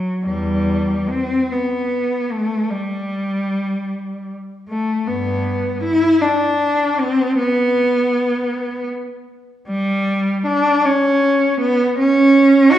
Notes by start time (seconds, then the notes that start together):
Already playing: F#3
0.25 E2 G3
1.10 C4
1.52 B3
2.32 A3
2.70 G3
4.69 A3
5.07 G2 B3
5.84 E4
6.22 D4
7.00 C4
7.39 B3
9.68 G3
10.46 D4
10.86 C#4
11.61 B3
11.99 C#4
12.73 F#4